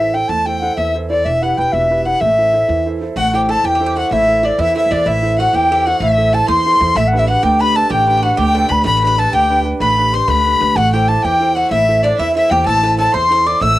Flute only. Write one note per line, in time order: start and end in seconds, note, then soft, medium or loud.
0.00 0.15 E5 medium
0.14 0.30 G5 medium
0.28 0.47 A5 medium
0.46 0.60 G5 medium
0.61 0.76 F#5 medium
0.77 0.93 E5 medium
1.10 1.26 D5 medium
1.25 1.44 E5 medium
1.42 1.59 F#5 medium
1.57 1.74 G5 medium
1.72 2.05 E5 medium
2.05 2.23 F#5 medium
2.21 2.86 E5 medium
3.18 3.38 F#5 medium
3.36 3.52 G5 medium
3.51 3.68 A5 loud
3.66 3.99 G5 medium
3.98 4.14 F#5 medium
4.13 4.47 E5 medium
4.46 4.62 D5 medium
4.60 4.77 E5 medium
4.78 4.94 E5 medium
4.92 5.09 D5 medium
5.08 5.41 E5 medium
5.39 5.56 F#5 medium
5.55 5.88 G5 loud
5.86 6.00 F#5 medium
6.01 6.36 E5 medium
6.35 6.49 A5 loud
6.50 6.98 C6 loud
6.97 7.09 E5 medium
7.08 7.21 F#5 medium
7.19 7.28 E5 loud
7.29 7.45 F#5 medium
7.43 7.62 G5 loud
7.61 7.78 B5 loud
7.76 7.91 A5 loud
7.92 8.21 G5 medium
8.24 8.40 F#5 loud
8.38 8.73 G5 medium
8.72 8.86 B5 loud
8.86 9.20 B5 loud
9.19 9.33 A5 loud
9.34 9.59 G5 loud
9.81 10.15 B5 loud
10.13 10.30 C6 loud
10.28 10.78 B5 loud
10.76 10.95 F#5 loud
10.93 11.10 G5 loud
11.09 11.26 A5 loud
11.25 11.56 G5 loud
11.57 11.74 F#5 medium
11.72 12.04 E5 loud
12.04 12.15 D5 medium
12.15 12.21 D5 medium
12.19 12.36 E5 loud
12.36 12.53 E5 loud
12.52 12.68 G5 loud
12.66 12.99 A5 loud
12.99 13.16 A5 loud
13.14 13.48 C6 loud
13.47 13.63 D6 loud
13.62 13.79 E6 loud